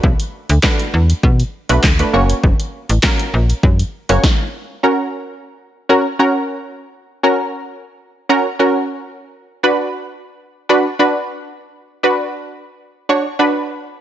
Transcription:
0.00 0.14 B1 loud
0.00 0.46 A3 medium
0.00 0.46 D4 medium
0.00 0.46 F#4 medium
0.00 0.46 B4 loud
0.00 kick loud
0.20 closed hi-hat medium
0.49 0.59 D2 medium
0.49 closed hi-hat medium
0.63 1.24 A3 medium
0.63 1.24 D4 medium
0.63 1.24 F#4 medium
0.63 1.25 B4 medium
0.63 kick loud
0.63 snare loud
0.63 clap loud
0.80 closed hi-hat medium
0.94 1.13 E2 loud
1.10 closed hi-hat medium
1.23 1.43 B2 loud
1.23 kick loud
1.40 closed hi-hat medium
1.69 1.79 B1 loud
1.69 1.86 A3 medium
1.69 1.86 D4 medium
1.69 1.86 F#4 medium
1.69 1.86 B4 loud
1.69 closed hi-hat medium
1.83 2.03 D2 loud
1.83 kick loud
1.83 snare loud
1.83 clap loud
1.99 2.13 A3 medium
1.99 2.14 D4 medium
1.99 2.13 F#4 medium
1.99 2.14 B4 medium
1.99 closed hi-hat medium
2.13 2.33 F#1 medium
2.13 2.86 A#3 medium
2.13 2.86 C#4 medium
2.13 2.86 F#4 medium
2.13 2.86 C#5 loud
2.30 closed hi-hat medium
2.44 2.54 F#1 loud
2.44 kick loud
2.60 closed hi-hat medium
2.89 2.99 A1 medium
2.89 closed hi-hat medium
3.03 3.64 A#3 medium
3.03 3.64 C#4 medium
3.03 3.65 F#4 medium
3.03 3.65 A#4 loud
3.03 kick loud
3.03 snare loud
3.03 clap loud
3.19 closed hi-hat medium
3.34 3.53 A#1 loud
3.50 closed hi-hat medium
3.63 3.83 F#2 loud
3.63 kick loud
3.79 closed hi-hat medium
4.09 4.19 F#1 medium
4.09 4.23 A#3 medium
4.09 4.23 C#4 medium
4.09 4.24 F#4 medium
4.09 4.24 C#5 loud
4.09 closed hi-hat medium
4.24 kick loud
4.24 snare medium
4.83 5.44 C#4 medium
4.83 5.44 F#4 medium
4.83 5.45 A#4 loud
5.89 6.06 C#4 loud
5.89 6.06 F#4 medium
5.89 6.06 A#4 loud
6.19 6.80 C#4 medium
6.19 6.80 F#4 medium
6.19 6.80 A#4 loud
7.23 7.84 C#4 medium
7.23 7.84 F#4 medium
7.23 7.85 A#4 loud
8.29 8.46 C#4 loud
8.29 8.46 F#4 medium
8.29 8.46 A#4 loud
8.59 9.20 C#4 medium
8.59 9.20 F#4 medium
8.59 9.20 A#4 loud
9.63 10.24 D4 medium
9.63 10.24 F#4 medium
9.63 10.25 B4 loud
10.69 10.86 D4 loud
10.69 10.86 F#4 medium
10.69 10.86 B4 loud
10.99 11.60 D4 loud
10.99 11.60 F#4 medium
10.99 11.60 B4 loud
12.03 12.64 D4 medium
12.03 12.64 F#4 medium
12.03 12.65 B4 loud
13.09 13.26 D4 loud
13.09 13.26 F#4 medium
13.09 13.26 C#5 loud
13.39 14.00 D4 loud
13.39 14.00 F#4 medium
13.39 14.00 B4 loud

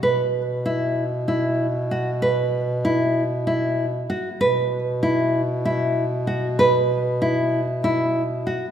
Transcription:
0.03 4.23 B2 medium
0.03 0.41 B4 medium
0.66 1.03 E4 medium
1.28 1.66 E4 medium
1.91 2.10 F#4 medium
2.22 2.60 B4 medium
2.85 3.22 E4 medium
3.47 3.85 E4 medium
4.10 4.28 F#4 medium
4.40 8.71 B2 medium
4.40 4.78 B4 medium
5.03 5.41 E4 medium
5.65 6.03 E4 medium
6.27 6.46 F#4 medium
6.59 6.97 B4 medium
7.22 7.59 E4 medium
7.84 8.22 E4 medium
8.47 8.65 F#4 medium

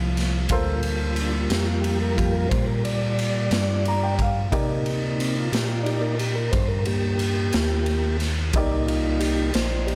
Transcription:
0.00 0.48 C2 loud
0.00 0.47 F3 medium
0.00 0.47 F4 medium
0.00 0.47 A4 medium
0.00 0.47 A#4 soft
0.00 0.47 C5 medium
0.17 snare soft
0.17 ride medium
0.48 1.48 D2 medium
0.48 4.48 G3 medium
0.48 2.15 A#3 soft
0.48 4.49 F4 medium
0.48 1.33 F4 medium
0.48 4.49 A4 medium
0.48 4.49 A#4 medium
0.48 4.50 C5 medium
0.48 kick loud
0.48 ride medium
0.83 ride medium
1.16 ride medium
1.21 1.36 D4 medium
1.34 1.50 F4 medium
1.50 2.48 F2 medium
1.50 1.66 G4 medium
1.50 snare loud
1.50 ride medium
1.65 1.82 F4 medium
1.82 1.99 G4 medium
1.82 ride medium
2.02 2.17 A#4 medium
2.16 2.47 F3 soft
2.16 2.48 A#3 soft
2.16 2.47 F4 medium
2.16 2.34 G4 medium
2.16 kick medium
2.16 ride medium
2.32 2.49 A#4 medium
2.49 3.49 A#2 medium
2.49 2.66 C5 medium
2.49 kick loud
2.49 ride medium
2.68 2.84 A#4 medium
2.85 4.15 D5 medium
2.85 ride medium
3.19 ride medium
3.51 4.49 G2 loud
3.51 snare loud
3.51 ride medium
3.85 4.03 A#5 medium
3.85 ride medium
4.03 4.19 G5 medium
4.19 4.52 F5 medium
4.19 kick medium
4.19 ride medium
4.51 5.50 C3 medium
4.51 5.48 A#3 medium
4.51 5.49 D#4 medium
4.51 8.50 D#4 medium
4.51 8.51 G4 medium
4.51 8.51 A#4 medium
4.51 8.51 D5 medium
4.51 kick loud
4.51 ride medium
4.86 ride medium
5.20 5.36 C4 loud
5.20 ride medium
5.39 5.54 F4 medium
5.52 6.50 A#2 medium
5.52 5.69 G4 medium
5.52 snare loud
5.52 ride medium
5.69 5.85 F4 medium
5.83 6.15 A#3 soft
5.83 6.15 D#4 medium
5.83 6.02 G4 medium
5.83 6.15 D5 soft
5.83 ride medium
6.01 6.18 A#4 medium
6.19 6.36 G4 medium
6.19 ride medium
6.35 6.52 A#4 medium
6.51 7.51 G2 medium
6.51 6.68 C5 medium
6.51 kick loud
6.51 ride medium
6.69 6.85 A#4 loud
6.85 8.17 A#3 medium
6.85 8.17 G4 loud
6.85 ride medium
7.19 ride medium
7.53 8.52 D#2 loud
7.53 snare loud
7.53 ride medium
7.86 ride medium
8.20 snare soft
8.20 ride medium
8.53 9.52 C2 medium
8.53 9.51 A#3 medium
8.53 9.52 D#4 medium
8.53 9.95 D#4 medium
8.53 9.95 G4 medium
8.53 9.95 D5 medium
8.53 kick loud
8.53 ride medium
8.57 9.95 A#4 medium
8.86 9.20 F4 medium
8.86 ride medium
9.20 9.53 G4 loud
9.20 ride medium
9.54 9.95 A#1 medium
9.54 9.88 C5 medium
9.54 snare loud
9.54 ride medium
9.87 9.95 G4 loud
9.87 ride medium

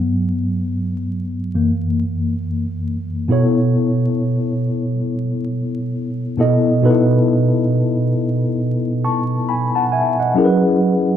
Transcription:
0.00 1.05 G2 soft
0.00 1.05 F#3 soft
0.00 1.05 B3 medium
1.54 2.82 F#2 soft
1.54 2.82 E3 soft
1.54 2.82 A#3 medium
3.28 4.90 B2 medium
3.28 4.91 B3 medium
3.28 4.91 E4 medium
3.28 4.92 A4 medium
3.28 4.92 C#5 medium
6.37 6.78 B2 medium
6.37 6.79 B3 medium
6.37 6.79 E4 medium
6.37 6.80 A4 medium
6.37 6.80 D#5 medium
6.82 8.44 B2 medium
6.82 8.44 B3 medium
6.82 6.91 D#4 medium
6.82 8.45 A4 medium
6.82 8.46 B4 medium
6.90 8.48 E4 medium
9.05 9.46 A5 medium
9.05 9.46 C#6 medium
9.49 9.74 G#5 medium
9.49 9.73 B5 medium
9.75 9.91 F#5 medium
9.75 9.91 A5 medium
9.92 10.17 E5 medium
9.92 10.17 G#5 medium
10.20 10.61 D#5 soft
10.20 10.61 F#5 medium
10.35 11.17 F#3 medium
10.35 11.17 C#4 medium
10.35 11.17 E4 medium
10.35 11.17 G#4 medium
10.35 10.45 A#4 medium
10.45 11.17 B4 medium

